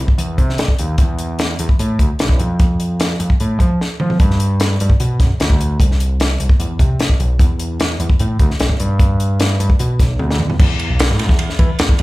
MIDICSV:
0, 0, Header, 1, 3, 480
1, 0, Start_track
1, 0, Tempo, 400534
1, 1191, Time_signature, 4, 2, 24, 8
1, 14412, End_track
2, 0, Start_track
2, 0, Title_t, "Picked electric bass"
2, 0, Program_c, 0, 34
2, 214, Note_on_c, 0, 40, 88
2, 443, Note_off_c, 0, 40, 0
2, 455, Note_on_c, 0, 48, 79
2, 684, Note_off_c, 0, 48, 0
2, 952, Note_on_c, 0, 39, 84
2, 1173, Note_off_c, 0, 39, 0
2, 1180, Note_on_c, 0, 40, 92
2, 1859, Note_off_c, 0, 40, 0
2, 1912, Note_on_c, 0, 40, 91
2, 2023, Note_off_c, 0, 40, 0
2, 2151, Note_on_c, 0, 45, 92
2, 2374, Note_off_c, 0, 45, 0
2, 2390, Note_on_c, 0, 38, 86
2, 2503, Note_off_c, 0, 38, 0
2, 2641, Note_on_c, 0, 35, 78
2, 2860, Note_off_c, 0, 35, 0
2, 2872, Note_on_c, 0, 41, 85
2, 3787, Note_off_c, 0, 41, 0
2, 3831, Note_on_c, 0, 41, 80
2, 3945, Note_off_c, 0, 41, 0
2, 4081, Note_on_c, 0, 45, 88
2, 4301, Note_off_c, 0, 45, 0
2, 4317, Note_on_c, 0, 53, 77
2, 4539, Note_off_c, 0, 53, 0
2, 4802, Note_on_c, 0, 53, 86
2, 5021, Note_off_c, 0, 53, 0
2, 5035, Note_on_c, 0, 43, 83
2, 5707, Note_off_c, 0, 43, 0
2, 5766, Note_on_c, 0, 43, 87
2, 5872, Note_off_c, 0, 43, 0
2, 5994, Note_on_c, 0, 47, 93
2, 6216, Note_off_c, 0, 47, 0
2, 6230, Note_on_c, 0, 42, 88
2, 6343, Note_off_c, 0, 42, 0
2, 6473, Note_on_c, 0, 38, 84
2, 6917, Note_off_c, 0, 38, 0
2, 6946, Note_on_c, 0, 36, 81
2, 7622, Note_off_c, 0, 36, 0
2, 7666, Note_on_c, 0, 36, 85
2, 7781, Note_off_c, 0, 36, 0
2, 7903, Note_on_c, 0, 40, 84
2, 8129, Note_off_c, 0, 40, 0
2, 8142, Note_on_c, 0, 48, 82
2, 8369, Note_off_c, 0, 48, 0
2, 8622, Note_on_c, 0, 35, 97
2, 8848, Note_off_c, 0, 35, 0
2, 8867, Note_on_c, 0, 40, 95
2, 9540, Note_off_c, 0, 40, 0
2, 9585, Note_on_c, 0, 40, 86
2, 9698, Note_off_c, 0, 40, 0
2, 9829, Note_on_c, 0, 45, 102
2, 10051, Note_off_c, 0, 45, 0
2, 10062, Note_on_c, 0, 38, 95
2, 10176, Note_off_c, 0, 38, 0
2, 10308, Note_on_c, 0, 35, 95
2, 10530, Note_off_c, 0, 35, 0
2, 10548, Note_on_c, 0, 43, 92
2, 11459, Note_off_c, 0, 43, 0
2, 11503, Note_on_c, 0, 43, 90
2, 11616, Note_off_c, 0, 43, 0
2, 11741, Note_on_c, 0, 47, 100
2, 11965, Note_off_c, 0, 47, 0
2, 11978, Note_on_c, 0, 35, 76
2, 12198, Note_off_c, 0, 35, 0
2, 12223, Note_on_c, 0, 38, 76
2, 12441, Note_off_c, 0, 38, 0
2, 12467, Note_on_c, 0, 40, 90
2, 12683, Note_off_c, 0, 40, 0
2, 12701, Note_on_c, 0, 40, 92
2, 13035, Note_off_c, 0, 40, 0
2, 13053, Note_on_c, 0, 35, 84
2, 13305, Note_on_c, 0, 45, 78
2, 13323, Note_off_c, 0, 35, 0
2, 13532, Note_off_c, 0, 45, 0
2, 13532, Note_on_c, 0, 40, 92
2, 13759, Note_off_c, 0, 40, 0
2, 13889, Note_on_c, 0, 52, 80
2, 14007, Note_off_c, 0, 52, 0
2, 14137, Note_on_c, 0, 40, 90
2, 14362, Note_off_c, 0, 40, 0
2, 14412, End_track
3, 0, Start_track
3, 0, Title_t, "Drums"
3, 97, Note_on_c, 9, 36, 73
3, 217, Note_off_c, 9, 36, 0
3, 221, Note_on_c, 9, 42, 75
3, 341, Note_off_c, 9, 42, 0
3, 457, Note_on_c, 9, 36, 67
3, 459, Note_on_c, 9, 42, 52
3, 577, Note_off_c, 9, 36, 0
3, 578, Note_off_c, 9, 42, 0
3, 593, Note_on_c, 9, 38, 33
3, 698, Note_on_c, 9, 42, 73
3, 710, Note_off_c, 9, 38, 0
3, 710, Note_on_c, 9, 38, 99
3, 818, Note_off_c, 9, 42, 0
3, 818, Note_on_c, 9, 36, 72
3, 830, Note_off_c, 9, 38, 0
3, 938, Note_off_c, 9, 36, 0
3, 941, Note_on_c, 9, 42, 60
3, 1061, Note_off_c, 9, 42, 0
3, 1174, Note_on_c, 9, 42, 78
3, 1178, Note_on_c, 9, 36, 98
3, 1294, Note_off_c, 9, 42, 0
3, 1298, Note_off_c, 9, 36, 0
3, 1421, Note_on_c, 9, 42, 61
3, 1541, Note_off_c, 9, 42, 0
3, 1662, Note_on_c, 9, 42, 82
3, 1674, Note_on_c, 9, 38, 97
3, 1782, Note_off_c, 9, 42, 0
3, 1794, Note_off_c, 9, 38, 0
3, 1904, Note_on_c, 9, 42, 60
3, 2024, Note_off_c, 9, 42, 0
3, 2026, Note_on_c, 9, 36, 74
3, 2146, Note_off_c, 9, 36, 0
3, 2149, Note_on_c, 9, 42, 78
3, 2269, Note_off_c, 9, 42, 0
3, 2388, Note_on_c, 9, 36, 72
3, 2390, Note_on_c, 9, 42, 60
3, 2508, Note_off_c, 9, 36, 0
3, 2509, Note_off_c, 9, 42, 0
3, 2626, Note_on_c, 9, 42, 77
3, 2638, Note_on_c, 9, 38, 102
3, 2746, Note_off_c, 9, 42, 0
3, 2747, Note_on_c, 9, 36, 78
3, 2758, Note_off_c, 9, 38, 0
3, 2867, Note_off_c, 9, 36, 0
3, 2870, Note_on_c, 9, 42, 59
3, 2990, Note_off_c, 9, 42, 0
3, 3110, Note_on_c, 9, 42, 70
3, 3112, Note_on_c, 9, 36, 105
3, 3229, Note_off_c, 9, 42, 0
3, 3232, Note_off_c, 9, 36, 0
3, 3352, Note_on_c, 9, 42, 61
3, 3472, Note_off_c, 9, 42, 0
3, 3591, Note_on_c, 9, 42, 81
3, 3603, Note_on_c, 9, 38, 109
3, 3711, Note_off_c, 9, 42, 0
3, 3723, Note_off_c, 9, 38, 0
3, 3833, Note_on_c, 9, 42, 56
3, 3953, Note_off_c, 9, 42, 0
3, 3954, Note_on_c, 9, 36, 73
3, 4074, Note_off_c, 9, 36, 0
3, 4074, Note_on_c, 9, 42, 69
3, 4194, Note_off_c, 9, 42, 0
3, 4313, Note_on_c, 9, 36, 72
3, 4314, Note_on_c, 9, 42, 53
3, 4433, Note_off_c, 9, 36, 0
3, 4434, Note_off_c, 9, 42, 0
3, 4570, Note_on_c, 9, 38, 49
3, 4690, Note_off_c, 9, 38, 0
3, 4791, Note_on_c, 9, 45, 73
3, 4911, Note_off_c, 9, 45, 0
3, 4913, Note_on_c, 9, 43, 66
3, 5029, Note_on_c, 9, 42, 70
3, 5031, Note_on_c, 9, 36, 106
3, 5033, Note_off_c, 9, 43, 0
3, 5149, Note_off_c, 9, 42, 0
3, 5151, Note_off_c, 9, 36, 0
3, 5161, Note_on_c, 9, 38, 29
3, 5272, Note_on_c, 9, 42, 60
3, 5281, Note_off_c, 9, 38, 0
3, 5391, Note_off_c, 9, 42, 0
3, 5511, Note_on_c, 9, 42, 88
3, 5523, Note_on_c, 9, 38, 105
3, 5631, Note_off_c, 9, 42, 0
3, 5643, Note_off_c, 9, 38, 0
3, 5754, Note_on_c, 9, 42, 62
3, 5867, Note_on_c, 9, 36, 77
3, 5874, Note_off_c, 9, 42, 0
3, 5987, Note_off_c, 9, 36, 0
3, 5990, Note_on_c, 9, 42, 79
3, 6110, Note_off_c, 9, 42, 0
3, 6228, Note_on_c, 9, 36, 82
3, 6230, Note_on_c, 9, 42, 60
3, 6242, Note_on_c, 9, 38, 33
3, 6348, Note_off_c, 9, 36, 0
3, 6350, Note_off_c, 9, 42, 0
3, 6362, Note_off_c, 9, 38, 0
3, 6471, Note_on_c, 9, 42, 70
3, 6483, Note_on_c, 9, 38, 100
3, 6587, Note_on_c, 9, 36, 81
3, 6590, Note_off_c, 9, 42, 0
3, 6602, Note_off_c, 9, 38, 0
3, 6707, Note_off_c, 9, 36, 0
3, 6718, Note_on_c, 9, 42, 59
3, 6838, Note_off_c, 9, 42, 0
3, 6946, Note_on_c, 9, 36, 101
3, 6952, Note_on_c, 9, 42, 84
3, 7066, Note_off_c, 9, 36, 0
3, 7072, Note_off_c, 9, 42, 0
3, 7087, Note_on_c, 9, 38, 31
3, 7194, Note_on_c, 9, 42, 63
3, 7207, Note_off_c, 9, 38, 0
3, 7313, Note_off_c, 9, 42, 0
3, 7430, Note_on_c, 9, 42, 81
3, 7442, Note_on_c, 9, 38, 108
3, 7550, Note_off_c, 9, 42, 0
3, 7562, Note_off_c, 9, 38, 0
3, 7670, Note_on_c, 9, 42, 61
3, 7783, Note_on_c, 9, 36, 84
3, 7789, Note_off_c, 9, 42, 0
3, 7902, Note_off_c, 9, 36, 0
3, 7906, Note_on_c, 9, 42, 76
3, 8026, Note_off_c, 9, 42, 0
3, 8142, Note_on_c, 9, 36, 76
3, 8146, Note_on_c, 9, 42, 60
3, 8261, Note_off_c, 9, 36, 0
3, 8266, Note_off_c, 9, 42, 0
3, 8383, Note_on_c, 9, 42, 70
3, 8395, Note_on_c, 9, 38, 99
3, 8502, Note_on_c, 9, 36, 72
3, 8503, Note_off_c, 9, 42, 0
3, 8515, Note_off_c, 9, 38, 0
3, 8621, Note_off_c, 9, 36, 0
3, 8627, Note_on_c, 9, 42, 54
3, 8746, Note_off_c, 9, 42, 0
3, 8861, Note_on_c, 9, 36, 102
3, 8864, Note_on_c, 9, 42, 77
3, 8981, Note_off_c, 9, 36, 0
3, 8984, Note_off_c, 9, 42, 0
3, 9102, Note_on_c, 9, 42, 60
3, 9222, Note_off_c, 9, 42, 0
3, 9344, Note_on_c, 9, 42, 83
3, 9356, Note_on_c, 9, 38, 110
3, 9464, Note_off_c, 9, 42, 0
3, 9476, Note_off_c, 9, 38, 0
3, 9585, Note_on_c, 9, 42, 63
3, 9702, Note_on_c, 9, 36, 80
3, 9705, Note_off_c, 9, 42, 0
3, 9821, Note_off_c, 9, 36, 0
3, 9821, Note_on_c, 9, 42, 73
3, 9940, Note_off_c, 9, 42, 0
3, 10060, Note_on_c, 9, 42, 62
3, 10061, Note_on_c, 9, 36, 81
3, 10180, Note_off_c, 9, 36, 0
3, 10180, Note_off_c, 9, 42, 0
3, 10194, Note_on_c, 9, 38, 32
3, 10301, Note_on_c, 9, 42, 86
3, 10313, Note_off_c, 9, 38, 0
3, 10313, Note_on_c, 9, 38, 101
3, 10420, Note_off_c, 9, 42, 0
3, 10420, Note_on_c, 9, 36, 77
3, 10432, Note_off_c, 9, 38, 0
3, 10540, Note_off_c, 9, 36, 0
3, 10542, Note_on_c, 9, 42, 62
3, 10662, Note_off_c, 9, 42, 0
3, 10780, Note_on_c, 9, 36, 102
3, 10780, Note_on_c, 9, 42, 83
3, 10900, Note_off_c, 9, 36, 0
3, 10900, Note_off_c, 9, 42, 0
3, 11024, Note_on_c, 9, 42, 62
3, 11144, Note_off_c, 9, 42, 0
3, 11261, Note_on_c, 9, 42, 88
3, 11273, Note_on_c, 9, 38, 115
3, 11381, Note_off_c, 9, 42, 0
3, 11393, Note_off_c, 9, 38, 0
3, 11506, Note_on_c, 9, 42, 64
3, 11620, Note_on_c, 9, 36, 81
3, 11626, Note_off_c, 9, 42, 0
3, 11736, Note_on_c, 9, 42, 76
3, 11740, Note_off_c, 9, 36, 0
3, 11856, Note_off_c, 9, 42, 0
3, 11978, Note_on_c, 9, 36, 83
3, 11981, Note_on_c, 9, 42, 60
3, 11993, Note_on_c, 9, 38, 33
3, 12098, Note_off_c, 9, 36, 0
3, 12101, Note_off_c, 9, 42, 0
3, 12113, Note_off_c, 9, 38, 0
3, 12216, Note_on_c, 9, 48, 56
3, 12336, Note_off_c, 9, 48, 0
3, 12350, Note_on_c, 9, 38, 61
3, 12458, Note_on_c, 9, 45, 87
3, 12470, Note_off_c, 9, 38, 0
3, 12578, Note_off_c, 9, 45, 0
3, 12579, Note_on_c, 9, 43, 68
3, 12698, Note_on_c, 9, 36, 124
3, 12699, Note_off_c, 9, 43, 0
3, 12699, Note_on_c, 9, 49, 113
3, 12818, Note_off_c, 9, 36, 0
3, 12819, Note_off_c, 9, 49, 0
3, 12936, Note_on_c, 9, 51, 70
3, 13056, Note_off_c, 9, 51, 0
3, 13176, Note_on_c, 9, 51, 98
3, 13188, Note_on_c, 9, 38, 127
3, 13296, Note_off_c, 9, 51, 0
3, 13307, Note_off_c, 9, 38, 0
3, 13307, Note_on_c, 9, 38, 34
3, 13413, Note_on_c, 9, 51, 83
3, 13425, Note_off_c, 9, 38, 0
3, 13425, Note_on_c, 9, 38, 37
3, 13533, Note_off_c, 9, 51, 0
3, 13533, Note_on_c, 9, 36, 77
3, 13542, Note_off_c, 9, 38, 0
3, 13542, Note_on_c, 9, 38, 32
3, 13647, Note_on_c, 9, 51, 97
3, 13653, Note_off_c, 9, 36, 0
3, 13662, Note_off_c, 9, 38, 0
3, 13767, Note_off_c, 9, 51, 0
3, 13777, Note_on_c, 9, 38, 37
3, 13888, Note_on_c, 9, 51, 74
3, 13891, Note_on_c, 9, 36, 80
3, 13897, Note_off_c, 9, 38, 0
3, 14008, Note_off_c, 9, 51, 0
3, 14010, Note_off_c, 9, 36, 0
3, 14126, Note_on_c, 9, 51, 96
3, 14138, Note_on_c, 9, 38, 113
3, 14246, Note_off_c, 9, 51, 0
3, 14249, Note_on_c, 9, 36, 82
3, 14257, Note_off_c, 9, 38, 0
3, 14365, Note_on_c, 9, 51, 77
3, 14369, Note_off_c, 9, 36, 0
3, 14412, Note_off_c, 9, 51, 0
3, 14412, End_track
0, 0, End_of_file